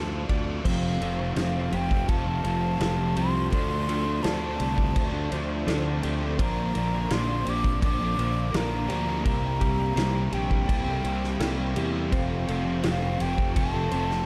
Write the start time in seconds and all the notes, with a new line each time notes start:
Already playing: D2 D3 F3 D4 F4 A4 C5 D5 F5
0.29 D2 F4 D5, kick, ride
0.63 F1 F2 C3 F3 C4 F4 C5 F5, kick, crash
0.68 A3 C4
1.00 F1 F2 C3 F3 A3 A4, crash
1.05 C4
1.19 C3 F3 A3 C4
1.24 F3
1.36 F1 F2 C3 F3 C5 F5, snare, crash
1.40 A3 C4
1.57 F3 A3 C4
1.72 F1 F2 C3 F3 G4 G5, muted overdriven electric guitar stroke, crash
1.89 C3 F3 C4, kick
1.94 F3 A3
2.08 F1 A4 A5, kick, crash
2.25 C3 F3 A3 C4
2.30 F3
2.43 F1 F2 C3 F3 C5, crash
2.48 A3 C4
2.80 F1 F2 C3 F3 A3 C4 A4, snare, crash
2.97 F3 A3 C4
3.15 C2 F2 C3 F3 A3 G4 C6, crash
3.19 C4
3.32 C3 F3
3.51 D2 D3 F3 A3 D4 C5 D5 C6, kick, crash
3.87 D3 F3 A3 D4 A4, crash
4.06 F3 A3 D4
4.22 D2 D3 F3 A3 D4 C5 A5, snare, crash
4.41 F3 A3 D4
4.59 C2 D3 A3 D4 G4, muted overdriven electric guitar stroke, crash
4.76 F3 A3 D4, kick
4.96 D2 A4, kick, crash
5.12 F3 A3 D4
5.31 D2 D3 F3 A3 D4 C5, crash
5.65 D2 D3 F3 A3 D4 A4, snare, crash
5.83 F3 A3 D4
6.03 D2 D3 F3 A3 D4 G4, crash
6.21 A3 D4
6.38 A#1 A#2 D3 F3 A#3 C5 A#5, kick, crash
6.42 D4
6.74 A#1 A#2 D3 F3 A#3 D4 A#4, crash
6.93 F3 A#3 D4
7.10 A#1 A#2 D3 F3 A#3 C5 C6, snare, crash
7.14 D4
7.28 F3 A#3 D4
7.46 A#1 A#2 F3 A#3 G4 D6, muted overdriven electric guitar stroke, crash
7.64 F3 A#3 D4, kick
7.82 A#1 A4 D6, kick, crash
8.01 F3 A#3 D4
8.17 A#1 A#2 D3 F3 A#3 C5, crash
8.21 D4
8.52 A#1 A#2 D3 F3 A#3 D4 A#4, snare, crash
8.56 A#5
8.71 F3 A#3 D4
8.88 D2 A#2 D3 F3 A#3 D4 G4, crash
9.07 F3 A#3
9.24 C2 C3 G3 A#3 C4 E4 G4 A#4 G5 A#5, kick, crash
9.59 C3 G3 A#3 C4 E4 G4, kick, crash
9.77 G3 A#3 C4 E4
9.95 C2 C3 G3 A#3 C4 E4 C5, snare, crash
10.15 G3 A#3 E4
10.31 A#1 C3 G3 C4 G4 G5, muted overdriven electric guitar stroke, crash
10.50 G3 A#3 C4 E4, kick
10.68 C2 A4, kick, crash
10.86 G3 A#3 C4 E4
11.04 C2 C3 G3 A#3 C4 E4 C5, crash
11.24 snare
11.39 C2 C3 G3 A#3 C4 E4 A4, snare, crash
11.56 G3 A#3 E4
11.74 E2 C3 G3 A#3 C4 E4 G4, crash
11.93 G3 C4
12.11 F1 F2 C3 F3 A3 C4 F4 A4 C5, kick, crash
12.15 F5
12.47 F1 F2 C3 F3 A3 C4 A4, crash
12.64 C3 F3 A3 C4
12.69 F3
12.83 F1 F2 C3 F3 A3 C4 C5, snare, crash
12.88 F5
13.02 F3 A3 C4
13.19 F1 F2 C3 F3 G4 G5, muted overdriven electric guitar stroke, crash
13.36 C3 F3 A3 C4, kick
13.56 F1 A4 A5, kick, crash
13.73 C3 F3 A3 C4
13.91 F1 F2 C3 F3 A3 C4 C5, crash
14.10 snare